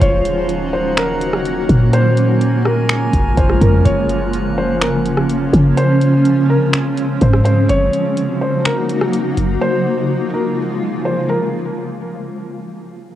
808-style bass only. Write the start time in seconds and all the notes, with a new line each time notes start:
0.01 D#1
1.69 A#2
3.13 A#1
3.38 A#1
3.61 F2
3.85 F#1
5.53 C#3
7.22 G#2